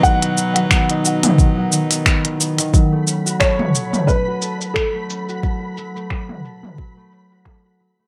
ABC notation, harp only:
X:1
M:4/4
L:1/16
Q:"Swing 16ths" 1/4=89
K:F#dor
V:1 name="Harp"
F D D, F, B, D F D D, F, D, B, B, D, B, D, | F, A, C F A F F, A, C F A F F, A, C F | A F F, A, C F A F F, A, C F A F F, A, |]